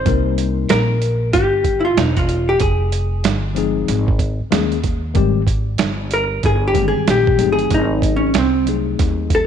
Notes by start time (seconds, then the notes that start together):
Already playing: C5
0.05 C2 G3 A#3 C4 D#4 A#4, kick, closed hi-hat
0.38 closed hi-hat
0.69 A#1 A#4, snare, closed hi-hat
1.02 closed hi-hat
1.33 G1 G4, kick, closed hi-hat
1.64 kick, closed hi-hat
1.80 E4
1.85 F4
1.97 E1 D#4, snare, closed hi-hat
2.17 F4, kick, closed hi-hat
2.29 closed hi-hat
2.49 G4
2.60 F1 G#4, kick, closed hi-hat
2.92 closed hi-hat
3.24 G1, snare, closed hi-hat
3.55 F3 G#3 C4 D#4 G#4, closed hi-hat
3.88 G#1, snare, closed hi-hat
4.08 kick
4.19 kick, closed hi-hat
4.40 muted upright bass stroke
4.51 D#2 D#3 G#3 A#3 C#4 G#4, snare, closed hi-hat
4.72 closed hi-hat
4.84 kick, closed hi-hat
5.14 G#1 D#3 G3 G#3 C4 G4, kick, closed hi-hat
5.47 kick, closed hi-hat
5.78 G1, snare, closed hi-hat
6.11 A#4, closed hi-hat
6.43 G1 G#4, kick, closed hi-hat
6.68 G4
6.74 D#3 G3 G#3 A#3 G4, kick, closed hi-hat
6.83 C4
6.88 G#4
6.96 muted upright bass stroke
7.08 A#1 G4, snare, closed hi-hat
7.27 kick
7.38 G1 F#3 A3 C4 D#4 G#4, closed hi-hat
7.52 G#4
7.59 closed hi-hat
7.71 G#1 D#4, kick, closed hi-hat
8.02 kick, closed hi-hat
8.16 C#4
8.34 C2, snare, closed hi-hat
8.38 C4
8.66 F#3 A3 C4 D#4 G#4, closed hi-hat
8.99 D#2, kick, snare, closed hi-hat
9.30 kick, closed hi-hat
9.35 A4